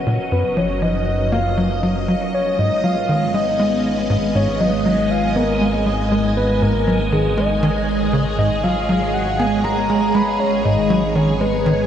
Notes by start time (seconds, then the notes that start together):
Already playing: F#1 F#3 C#4 A#4 D#5
0.06 A#2
0.32 F#1 F#2 B4
0.57 F3 C#5
0.82 F3 D#5
1.32 A#3 F5
1.57 F#3
1.83 F#3
2.08 F#3
2.33 G#1 G#3 C#5
2.59 G#2 B3 D#5
2.77 G#4
2.84 F#3 F5
3.09 D#3
3.34 G#3 D#5
3.59 G#3
4.10 G#2
4.35 G#2 C#5
4.60 F#3 D#5
4.86 F#3
5.11 F5
5.36 B3 A#4
5.61 G#3
5.86 G#3
6.12 G#3
6.37 B4
6.62 G#2 A#4
6.87 F#3
6.92 C#5
7.12 D#3 G#4
7.38 G#3 D#5
7.63 D#3
8.13 C#3
8.38 G#2 D#5
8.64 F#3 F5
8.89 F#3
9.14 F#5
9.39 B3 G#5
9.64 G#3 A#5
9.90 G#3
10.14 G#3 B5
10.40 G#1 C#5
10.65 G#2 D#5
10.90 F#3
11.15 D#3 C#5
11.40 G#3 B4
11.66 D#3